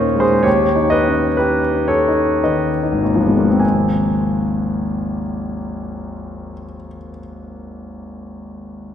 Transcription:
Already playing: D#2 A#2 C#4 D#4 A#4 C5 C#5 D#5 F5 G#5
0.15 G#3
0.20 G#4 C5
0.43 D#2 G4 C#5
0.76 D#4
0.90 B4 D#5
1.08 C#4
1.37 D#4 G4 B4
1.73 C#4
1.88 A4 C#5
2.08 D#4
2.44 D#3 B4 D#5
2.83 D#4
2.92 G#1
3.04 D#2
3.15 F3
3.23 G#3 B3
3.38 A#3
3.50 C4
3.60 G#5

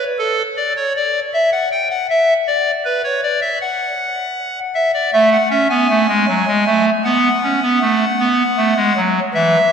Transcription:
0.18 A4
0.57 D5
0.77 C#5
0.96 D5
1.33 E5
1.52 F#5
1.72 G5
1.90 F#5
2.10 E5
2.47 D5
2.85 B4
3.04 C#5
3.23 D5
3.41 E5
3.61 F#5
4.75 E5
4.94 D5
5.13 A3 E5
5.32 F#5
5.50 C#4 E5
5.70 B3 G#5
5.90 A3
6.08 G#3
6.28 F#3
6.48 G#3
6.66 A3
7.05 B3 F#5
7.43 C#4
7.62 B3
7.81 A3
8.19 B3
8.57 A3
8.77 G#3
8.97 F#3
9.34 E3 E5

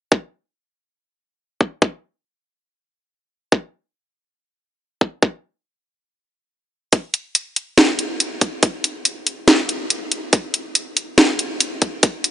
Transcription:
0.12 kick
1.61 kick
1.82 kick
3.52 kick
5.01 kick
5.23 kick
6.93 kick, closed hi-hat
7.14 closed hi-hat
7.35 closed hi-hat
7.56 closed hi-hat
7.78 snare, closed hi-hat
7.99 closed hi-hat
8.20 closed hi-hat
8.41 kick, closed hi-hat
8.63 kick, closed hi-hat
8.84 closed hi-hat
9.05 closed hi-hat
9.27 closed hi-hat
9.48 snare, closed hi-hat
9.69 closed hi-hat
9.90 closed hi-hat
10.12 closed hi-hat
10.33 kick, closed hi-hat
10.54 closed hi-hat
10.75 closed hi-hat
10.97 closed hi-hat
11.18 snare, closed hi-hat
11.39 closed hi-hat
11.60 closed hi-hat
11.82 kick, closed hi-hat
12.03 kick, closed hi-hat
12.24 closed hi-hat

